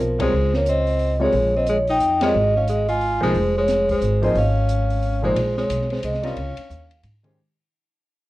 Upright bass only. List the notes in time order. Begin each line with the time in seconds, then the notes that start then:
0.00 B1
0.32 C#2
1.33 A#1
2.00 F2
2.34 G#1
3.22 B1
3.34 F1
4.01 G#1
4.35 G#1
5.36 A#1
5.70 B1
6.03 C2
6.36 C#2
6.58 muted upright bass stroke
6.70 D#2
7.03 G#2